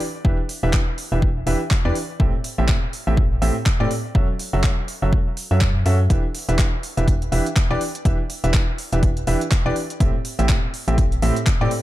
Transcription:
0.00 open hi-hat
0.25 E1 E3 D4 G4 B4 E5, kick
0.49 open hi-hat
0.63 E1 E3 D4 G4 B4 E5
0.73 kick, clap
0.98 open hi-hat
1.12 E1 E3 D4 G4 B4 E5
1.22 kick
1.47 E1 E3 D4 G4 B4 E5, open hi-hat
1.71 kick, clap
1.85 E2 E3 D4 G4 B4 D5
1.95 open hi-hat
2.20 A1 A2 C4 G4 A4 E5, kick
2.44 open hi-hat
2.58 A1 A2 C4 G4 A4 E5
2.68 kick, clap
2.93 open hi-hat
3.07 A1 A2 C4 G4 A4 E5
3.17 kick
3.42 A1 A2 C4 G4 A4 E5, open hi-hat
3.66 kick, clap
3.80 A2 C4 G4 A4 D5
3.91 open hi-hat
4.15 F#1 F#3 C#4 F#4 A4 E5, kick
4.39 open hi-hat
4.53 F#1 F#3 C#4 F#4 A4 E5
4.64 kick, clap
4.88 open hi-hat
5.02 F#1 F#3 C#4 F#4 A4 E5
5.13 kick
5.37 open hi-hat
5.51 F#2 F#3 C#4 F#4 A4 E5
5.61 kick, clap
5.86 F#2 C#4 F#4 A4 E5, open hi-hat
6.10 E1 E3 D4 G4 B4 E5, kick, closed hi-hat
6.35 open hi-hat
6.49 E1 E3 D4 G4 B4 E5, closed hi-hat
6.59 kick, clap, closed hi-hat
6.83 open hi-hat
6.97 E1 E3 D4 G4 B4 E5, closed hi-hat
7.08 kick, closed hi-hat
7.22 closed hi-hat
7.32 E1 E3 D4 G4 B4 E5, open hi-hat
7.46 closed hi-hat
7.56 kick, clap, closed hi-hat
7.70 E1 E3 D4 G4 B4 D5
7.81 open hi-hat
7.95 closed hi-hat
8.05 E1 E3 D4 G4 B4 E5, kick, closed hi-hat
8.30 open hi-hat
8.44 E1 E3 D4 G4 B4 E5, closed hi-hat
8.54 kick, clap, closed hi-hat
8.78 open hi-hat
8.93 E1 E3 D4 G4 B4 E5, closed hi-hat
9.03 kick, closed hi-hat
9.17 closed hi-hat
9.27 E1 E3 D4 G4 B4 E5, open hi-hat
9.41 closed hi-hat
9.51 kick, clap, closed hi-hat
9.66 E1 E3 D4 G4 B4 D5
9.76 open hi-hat
9.90 closed hi-hat
10.00 A1 A2 C4 G4 A4 E5, kick, closed hi-hat
10.25 open hi-hat
10.39 A1 A2 C4 G4 A4 E5, closed hi-hat
10.49 kick, clap, closed hi-hat
10.74 open hi-hat
10.88 A1 A2 C4 G4 A4 E5, closed hi-hat
10.98 kick, closed hi-hat
11.12 closed hi-hat
11.22 A1 A2 C4 G4 A4 E5, open hi-hat
11.36 closed hi-hat
11.47 kick, clap, closed hi-hat
11.61 A2 C4 G4 A4 D5
11.71 open hi-hat

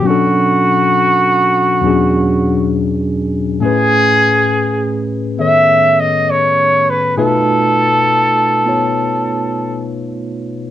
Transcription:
0.00 B2 F#3
0.05 C#4 D4 F#4
0.11 A4
1.81 E2 B2 F#3 C#4
1.85 D4 G#4
3.60 A2 A3 C#4 G#4
3.65 B4
5.38 D#3 B3 A4 C#5 E5
6.00 D#5
6.30 C#5
6.90 B4
7.18 B2 A3 D#4 F4 A4 B4
8.65 B3 F4 C#5

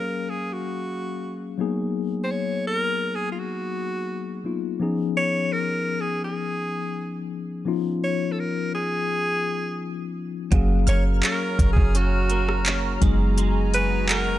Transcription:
Already playing: F#3 A#3 C#4 G#4 A#4 F5
0.29 G#4
0.53 F#4
1.58 F#3 A#3 B3 D#4 G#4
2.24 C5
2.31 C#5
2.67 A#4
3.15 G#4
3.32 F4
3.39 F#4
4.44 F#3 A#3 B3 D#4 F4
4.80 F3 B3 C#4 D#4 G#4
5.17 C#5
5.53 A#4
6.01 G#4
6.24 G#4
7.65 F3 B3 C#4 D#4 F4
8.04 C#5
8.32 A4
8.40 A#4
8.75 G#4
10.51 F#1 F#3 A#3 C#4 F#4 G#4 F5 A#5 F6, kick, closed hi-hat
10.87 F#1 A#3 C#5 F6, closed hi-hat
11.23 C#4 A#4, clap, closed hi-hat
11.59 F#1, kick, closed hi-hat
11.73 F#1 G#4
11.77 kick
11.95 C#4 F#4, closed hi-hat
12.30 A#3, closed hi-hat
12.49 cross-stick
12.66 C#4, clap, closed hi-hat
13.01 F#1 F#3 G#3 B3 D#4 G#4 G#5, kick, closed hi-hat
13.38 G#3, closed hi-hat
13.74 B3 B4, closed hi-hat
14.09 F#4 A#4, clap, closed hi-hat

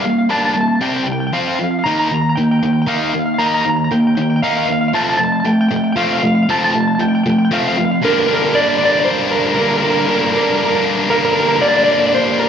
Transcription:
0.02 G3 A#3 F5
0.10 F5
0.18 F5
0.29 G3 A#3 D4 A5
0.38 A5
0.45 A5
0.54 G3 A#3 A5
0.61 A5
0.68 A5
0.75 A5
0.81 C3 G3 C4 G5
0.89 G5
0.96 G5
1.04 C3 G3 G5
1.12 G5
1.20 G5
1.27 G5
1.33 F3 C4 F4 F5
1.41 F5
1.48 F5
1.55 F5
1.60 F3 C4 F5
1.71 F5
1.79 F5
1.84 D#3 A#3 D#4 A#5
1.91 A#5
1.99 A#5
2.06 A#5
2.12 D#3 A#3 A#5
2.22 A#5
2.29 A#5
2.36 D#3 A#3 G5
2.44 G5
2.51 G5
2.59 D#3 A#3 G5
2.65 G5
2.73 G5
2.82 G5
2.86 D#3 A#3 D#4 F5
2.96 F5
3.03 F5
3.10 F5
3.14 D#3 A#3
3.19 F5
3.26 F5
3.34 F5
3.38 D#3 A#3 D#4 A#5
3.46 A#5
3.54 A#5
3.61 D#3 A#5
3.66 A#3 A#5
3.76 A#5
3.84 A#5
3.91 D#3 A#3 G5
4.00 G5
4.07 G5
4.15 D#3 A#3 G5
4.22 G5
4.30 G5
4.36 G5
4.42 D#3 A#3 D#4 F5
4.50 F5
4.57 F5
4.66 D#3 A#3 F5
4.72 F5
4.81 F5
4.88 F5
4.93 F3 A3 C4 A5
5.02 A5
5.09 A5
5.17 F3 A3 A5
5.24 A5
5.32 A5
5.40 A5
5.45 F3 A3 G5
5.53 G5
5.61 G5
5.68 F3 A3 G5
5.76 G5
5.84 G5
5.92 F3 G5
5.97 A3 C4 F5
6.04 F5
6.13 F5
6.19 F3 A3 F5
6.27 F5
6.35 F5
6.43 F5
6.49 F3 A3 C4 A5
6.59 A5
6.64 A5
6.72 F3 A3 A5
6.81 A5
6.88 A5
6.95 A5
7.00 F3 A3 G5
7.08 G5
7.15 G5
7.23 F3 A3 G5
7.30 G5
7.38 G5
7.45 G5
7.51 F3 A3 C4 F5
7.60 F5
7.68 F5
7.77 F3 A3 F5
7.85 F5
7.91 F5
8.02 G2 D3 G3 A#3 D4 A#4
8.13 A#4
8.19 A#4
8.27 G3 A#3 D4 A#4
8.35 A#4
8.42 A#4
8.49 A#4
8.54 D3 G3 A#3 D4 D5
8.62 D5
8.70 D5
8.77 D4 D5
8.83 G3 A#3 D5
8.93 D5
9.00 D5
9.04 C5
9.31 A#4
9.40 A#4
9.46 A#4
9.54 G2 D3 A#4
9.58 G3 A#3 D4 A#4
9.69 A#4
9.77 A#4
9.82 G3 A#3 D4 A#4
9.90 A#4
9.99 A#4
10.06 D3 G3 A#3 A#4
10.10 D4
10.15 A#4
10.22 A#4
10.29 D4 A#4
10.35 G3 A#3 A#4
10.43 A#4
10.51 A#4
10.58 A#4
10.66 A#4
10.75 A#4
11.09 G2 D3 G3 A#3 D4 A#4
11.18 A#4
11.25 A#4
11.33 D4 A#4
11.37 G3 A#3 A#4
11.49 A#4
11.56 A#4
11.61 D3 G3 A#3 D4 D5
11.68 D5
11.77 D5
11.84 A#3 D4 D5
11.89 G3 D5
12.00 D5
12.07 D5
12.15 C5
12.39 A#4

